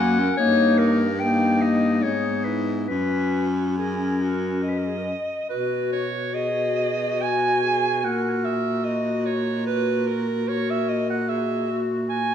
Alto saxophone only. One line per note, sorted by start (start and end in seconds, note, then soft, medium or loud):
0.00 0.20 F#4 medium
0.19 0.38 A#4 medium
0.39 1.04 D#4 medium
1.21 2.02 D#4 medium
2.05 2.48 D#4 medium
2.46 2.91 E4 medium
2.89 3.77 F#4 medium
3.77 4.23 G#4 medium
4.21 4.64 F#4 medium
4.62 5.49 D#5 medium
5.49 5.89 B4 medium
5.92 6.36 C#5 medium
6.34 7.23 D#5 medium
7.21 8.06 G#5 medium
8.04 8.46 F#5 medium
8.45 8.86 E5 medium
8.85 9.27 D#5 medium
9.26 9.66 C#5 medium
9.66 10.09 B4 medium
10.07 10.50 A#4 medium
10.48 10.72 C#5 medium
10.70 10.91 E5 medium
10.89 11.09 D#5 medium
11.10 11.30 F#5 medium
11.29 11.81 E5 medium
12.09 12.35 G#5 medium